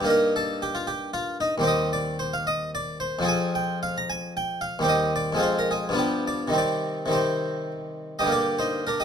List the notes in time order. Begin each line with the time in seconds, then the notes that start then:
0.01 G2 G3 A#3
0.06 D#4 A#4
0.36 A4
0.62 G4
0.75 F4
0.87 G4
1.14 F4
1.41 D#4
1.58 D#2 G3 C4
1.64 G4 D#5
1.93 D5
2.19 C5
2.33 F5
2.47 D#5
2.75 D5
3.00 C5
3.19 F2 F3 C4
3.25 G#4 G#5
3.55 G5
3.83 F5
3.98 A#5
4.10 G#5
4.37 G5
4.61 F5
4.79 D#2 G3 C4
4.85 G4
4.89 D#5
5.16 D5
5.32 F2 G#3
5.37 C4 F4
5.43 C5
5.59 A#4
5.71 G#4
5.89 G2 F3
5.93 B3 D4
5.99 G4
6.28 D5
6.48 C3 D#3
6.52 G3 C4
6.58 D5
7.06 C3 D#3
7.10 G3 C4
7.15 C5
8.19 G2 D3 G4 D#5
8.26 G3 A#3
8.32 G4 D5
8.59 D#4 C5
8.87 D4 A#4
9.00 G4 D#5